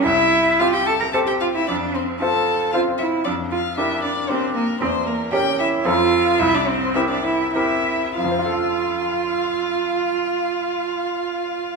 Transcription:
<<
  \new Staff \with { instrumentName = "Violin" } { \time 3/4 \key f \major \tempo 4 = 110 e''4 f''16 g''16 a''16 bes''16 a''16 g''16 f''16 e''16 | d''8 c''8 a''4 f''8 e''8 | d''8 f''8 e''8 d''8 c''8 bes'8 | c''8 bes'8 g''8 e''8 f''4 |
e''16 d''16 c''8 e''16 d''16 e''8 e''4 | f''2.~ | f''2. | }
  \new Staff \with { instrumentName = "Grand piano" } { \time 3/4 \key f \major c,4 <c' g' c''>4 <c' g' c''>4 | f,4 <c' f' c''>4 <c' f' c''>4 | f,4 <d' g' bes'>4 <d' g' bes'>4 | e,4 <cis' g' bes'>4 <f, c' f' a'>4 |
c,4 <c' g' bes'>4 <c' g' bes'>4 | <f, f c' f' a' f''>2.~ | <f, f c' f' a' f''>2. | }
  \new Staff \with { instrumentName = "Cello" } { \time 3/4 \key f \major e'4 f'16 g'16 a'16 bes'16 a'16 g'16 f'16 e'16 | d'8 c'8 a'4 f'8 e'8 | d'8 f'8 e'8 d'8 c'8 bes8 | c'8 bes8 g'8 e'8 f'4 |
e'16 d'16 c'8 e'16 d'16 e'8 e'4 | f'2.~ | f'2. | }
>>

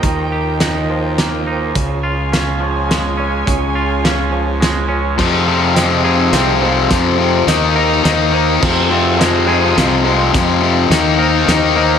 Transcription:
<<
  \new Staff \with { instrumentName = "Clean electric guitar" } { \time 3/4 \key f \minor \tempo 4 = 105 bes'4 ees''8 c''4 c''8 | des''4 f''8 des''4 des''8 | des''4 f''8 des''4 des''8 | c''4 ees''8 c''4 c''8 |
c''4 ees''8 c''4 c''8 | c''4 ees''8 c''4 c''8 | c''4 ees''8 c''4 c''8 | }
  \new Staff \with { instrumentName = "String section" } { \time 3/4 \key f \minor << { <bes' ees'' g''>2. | <aes' des'' aes''>2.~ | <aes' des'' aes''>2. | <aes' f'' c'''>2.~ |
<aes' f'' c'''>4 <bes' bes'' ees'''>2 | <aes' f'' c'''>2.~ | <aes' f'' c'''>4 <ees'' bes''>2 | } \\ { f'2.~ | f'2.~ | f'2. | ees'2.~ |
ees'4 ees'4 ees'4 | ees'2.~ | ees'4 bes4 bes4 | } >> }
  \new Staff \with { instrumentName = "Clean electric guitar" } { \clef bass \time 3/4 \key f \minor <ees f bes ees'>8 g'8 ees'8 f8 bes8 ees'8 | des8 f'8 des'8 f8 aes8 des'8 | des8 f'8 des'8 f8 aes8 des'8 | f,8 c8 aes8 aes'8 c'8 aes8 |
f,8 c8 ees8 bes'8 ees8 bes8 | f,8 c8 aes8 aes'8 c'8 aes8 | f,8 c8 ees8 bes'8 ees8 bes8 | }
  \new Staff \with { instrumentName = "Distorted electric guitar" } { \clef bass \time 3/4 \key f \minor r2. | r2. | r2. | <f, c f>8 <f, c f>8 <f, c f>8 <f, c f>8 <f, c f>8 <f, c f>8 |
<f, c f>8 <f, c f>8 <ees bes ees'>8 <ees bes ees'>8 <ees bes ees'>8 <ees bes ees'>8 | <f, c f>8 <f, c f>8 <f, c f>8 <f, c f>8 <f, c f>8 <f, c f>8 | <f, c f>8 <f, c f>8 <ees bes ees'>8 <ees bes ees'>8 <ees bes ees'>8 <ees bes ees'>8 | }
  \new Staff \with { instrumentName = "Fingered electric bass" } { \clef bass \time 3/4 \key f \minor ees,2. | des,2. | des,2. | f,2 c,4 |
f,4 ees,4 ees,4 | f,2 c,4 | f,4 ees,4 ees,4 | }
  \new DrumStaff \with { instrumentName = "Drums" } \drummode { \time 3/4 <hh bd>4 <hh sn>4 <hh sn>4 | <hh bd>4 <hh sn>4 <hh sn>4 | <hh bd>4 <hh sn>4 <hh sn>4 | <cymc bd sn>4 <hh sn>4 <hh sn>4 |
<hh bd sn>4 <hh sn>4 <hh sn>4 | <cymc bd sn>4 <hh sn>4 <hh sn>4 | <hh bd sn>4 <hh sn>4 <hh sn>4 | }
>>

